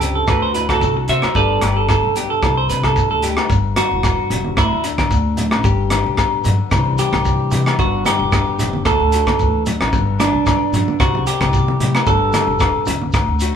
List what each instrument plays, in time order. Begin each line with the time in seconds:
Already playing: upright bass C#2, nylon-string guitar G2 B3 D4 G4
0.01 nylon-string guitar C3, clean electric guitar G4, closed hi-hat, shekere
0.15 clean electric guitar A4
0.28 upright bass D2, nylon-string guitar D3 D4 F#4, clean electric guitar F#4 B4, kick, cross-stick, low agogo, shekere
0.42 clean electric guitar C5
0.54 nylon-string guitar E4, clean electric guitar B4, closed hi-hat, shekere
0.69 nylon-string guitar F#4, clean electric guitar F#4 A4, kick, cross-stick, low agogo
0.81 upright bass C2, nylon-string guitar A3 F#4, kick, shekere
0.97 muted clean electric guitar stroke
1.08 upright bass C3, nylon-string guitar D4, clean electric guitar F#4 C5 E5, closed hi-hat
1.22 upright bass D3, cross-stick, low agogo
1.35 upright bass G1, nylon-string guitar G2 B3 D4 G4, clean electric guitar A4 B4 D5, kick, shekere
1.61 upright bass G1, clean electric guitar G4, cross-stick, closed hi-hat, low agogo
1.77 clean electric guitar A4
1.89 nylon-string guitar D3 G4, clean electric guitar A4, kick, cross-stick, low agogo, shekere
2.04 upright bass B1
2.16 nylon-string guitar B3, clean electric guitar G4, closed hi-hat, shekere
2.30 clean electric guitar A4
2.42 upright bass C2, nylon-string guitar C3 G3 D4 E4, kick, cross-stick, low agogo, shekere
2.57 clean electric guitar C5
2.70 upright bass C3, nylon-string guitar D4, clean electric guitar B4, closed hi-hat, shekere
2.84 clean electric guitar A4, kick, cross-stick, low agogo
2.96 nylon-string guitar B2, kick, shekere
3.11 upright bass D2, clean electric guitar A4
3.22 nylon-string guitar A2, clean electric guitar G4, closed hi-hat, shekere
3.37 cross-stick, low agogo
3.50 upright bass G1, nylon-string guitar G2, kick, shekere
3.76 nylon-string guitar D4, clean electric guitar F#4, cross-stick, closed hi-hat, high conga, low agogo, shekere
3.91 upright bass E1
4.03 nylon-string guitar B2, kick, cross-stick, low agogo, shekere
4.30 upright bass E1, nylon-string guitar C3, closed hi-hat, low conga
4.44 high conga
4.57 upright bass D2, nylon-string guitar D3 A3 D4, clean electric guitar E4, kick, cross-stick, low agogo, shekere
4.72 upright bass D2
4.84 nylon-string guitar D4, muted clean electric guitar stroke, closed hi-hat, shekere
4.98 kick, cross-stick, high conga, low agogo
5.11 upright bass D2, nylon-string guitar D4, kick, shekere
5.37 nylon-string guitar A3, closed hi-hat, low conga, shekere
5.51 upright bass A1, cross-stick, low agogo
5.64 upright bass G1, nylon-string guitar G2, clean electric guitar G4, kick, shekere
5.90 nylon-string guitar D4, cross-stick, closed hi-hat, high conga, low agogo, shekere
6.06 upright bass B1
6.17 nylon-string guitar B3, kick, cross-stick, low agogo, shekere
6.44 upright bass G2, nylon-string guitar D3, closed hi-hat, low conga, shekere
6.71 upright bass C2, nylon-string guitar C3 E3 G3 D4 E4, kick, cross-stick, low agogo, shekere
6.85 upright bass C2
6.98 nylon-string guitar D4, clean electric guitar G4, closed hi-hat, shekere
7.12 upright bass C2, kick, cross-stick, high conga, low agogo
7.25 nylon-string guitar G3, kick, shekere
7.51 upright bass C3, nylon-string guitar E3, closed hi-hat, low conga, shekere
7.66 cross-stick, low agogo
7.79 upright bass G1, nylon-string guitar G2 D3 B3 D4, clean electric guitar F#4, kick, shekere
8.06 clean electric guitar G4, cross-stick, closed hi-hat, high conga, low agogo, shekere
8.19 upright bass E1
8.32 nylon-string guitar B2, kick, cross-stick, low agogo, shekere
8.58 upright bass E1, nylon-string guitar C3, closed hi-hat, low conga, shekere
8.73 high conga
8.85 upright bass D2, nylon-string guitar D3 A3 D4 F#4, clean electric guitar A4, kick, cross-stick, low agogo, shekere
9.00 upright bass D2
9.12 nylon-string guitar F#4, closed hi-hat, shekere
9.27 kick, cross-stick, high conga, low agogo
9.39 upright bass D2, nylon-string guitar E3, kick, shekere
9.66 nylon-string guitar F#3, closed hi-hat, low conga, shekere
9.80 upright bass A1, cross-stick, low agogo
9.92 upright bass G1, nylon-string guitar G2 D3 B3 D4, muted nylon-string guitar stroke, kick, shekere
10.20 clean electric guitar D4, nylon-string guitar D4, cross-stick, closed hi-hat, high conga, low agogo, shekere
10.33 upright bass B1
10.46 nylon-string guitar B3, kick, cross-stick, low agogo, shekere
10.72 upright bass G2, nylon-string guitar D3, closed hi-hat, low conga, shekere
10.88 high conga
11.00 upright bass C2, nylon-string guitar C3, clean electric guitar F#4, kick, cross-stick, low agogo, shekere
11.13 upright bass C2, low conga
11.27 nylon-string guitar D4, clean electric guitar G4, closed hi-hat, shekere
11.41 upright bass C2, kick, cross-stick, high conga, low agogo
11.53 nylon-string guitar B2, kick, shekere
11.68 high conga
11.80 nylon-string guitar A2, upright bass C3, closed hi-hat, low conga
11.95 cross-stick, low agogo
12.06 upright bass G1, nylon-string guitar G2 D3 B3 D4 G4, clean electric guitar A4, kick, shekere
12.33 nylon-string guitar D4, cross-stick, closed hi-hat, high conga, low agogo, shekere
12.47 upright bass E1
12.60 nylon-string guitar B3, kick, cross-stick, low agogo, shekere
12.86 upright bass C#2, nylon-string guitar D3, closed hi-hat, low conga, shekere
13.02 high conga
13.13 upright bass D2, nylon-string guitar D3, kick, cross-stick, low agogo, shekere
13.28 upright bass D2
13.40 nylon-string guitar F#4, closed hi-hat, shekere